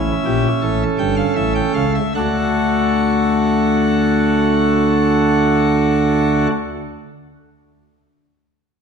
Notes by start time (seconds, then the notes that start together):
Already playing: A1 A2 C#4 E4 E5
0.25 A#1 A#2 G4
0.61 A1 A2 A4
0.99 G1 G2 G5
1.17 F5
1.36 A1 A2 E5
1.55 G5
1.74 C#2 C#3 F5
1.95 E5
2.15 D2 D3 A3 D4 F#4 A4 F#5